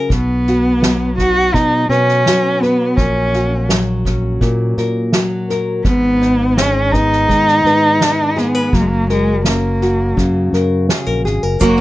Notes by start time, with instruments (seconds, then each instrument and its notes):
Already playing: nylon-string guitar F#3 F#4
0.10 fingered electric bass B1, nylon-string guitar B2, cello B3, kick, snare
0.47 nylon-string guitar F#4, snare
0.82 nylon-string guitar F#3, snare
1.18 nylon-string guitar D#4, cello F#4, kick, snare
1.54 fingered electric bass B2, nylon-string guitar B2, cello D#4, kick, snare
1.89 fingered electric bass B2, cello C#4, nylon-string guitar B4, snare
2.08 snare
2.26 nylon-string guitar F#3 F#4, snare
2.61 cello B3, nylon-string guitar B4, snare
2.97 fingered electric bass A#1, nylon-string guitar A#2, cello C#4, kick, snare
3.33 nylon-string guitar F#4, snare
3.69 nylon-string guitar F#3, snare
4.05 nylon-string guitar C#4, kick, snare
4.41 fingered electric bass A#2, nylon-string guitar A#2, kick, snare
4.77 fingered electric bass A#2, nylon-string guitar A#4, snare
5.12 nylon-string guitar F#3 F#4, snare
5.49 nylon-string guitar A#4, snare
5.84 fingered electric bass G#1, nylon-string guitar G#2, cello B3, kick, snare
6.21 nylon-string guitar D#4, snare
6.57 nylon-string guitar G#3, cello C#4, snare
6.92 nylon-string guitar B3, cello D#4, kick, snare
7.12 snare
7.29 fingered electric bass G#2, nylon-string guitar D#3, kick, snare
7.47 snare
7.64 fingered electric bass G#2, nylon-string guitar B4, snare
8.01 nylon-string guitar G#3 D#4, snare
8.36 cello B3, nylon-string guitar G#4, snare
8.55 nylon-string guitar B4
8.73 fingered electric bass F#1, nylon-string guitar F#3, cello A#3, kick, snare
8.80 cello G#3
8.88 cello A#3
9.09 cello G#3, nylon-string guitar A#4, snare
9.45 cello A#3, nylon-string guitar C#4, snare
9.81 nylon-string guitar F#4, snare
10.17 fingered electric bass F#2, nylon-string guitar C#3, kick, snare
10.53 fingered electric bass F#2, nylon-string guitar A#4, snare
10.89 nylon-string guitar C#4 G#4, snare
11.06 fingered electric bass A#1, nylon-string guitar A#4
11.25 fingered electric bass G#1, nylon-string guitar G#4, snare
11.43 fingered electric bass F#1, nylon-string guitar A#4
11.60 fingered electric bass F#1, nylon-string guitar F#3 C#4 F#4 A#4, steel-string acoustic guitar A#3 F#4, cello A#3, tonewheel organ A#4 C#5 F#5 C#6, kick, snare, shaker
11.78 steel-string acoustic guitar C#4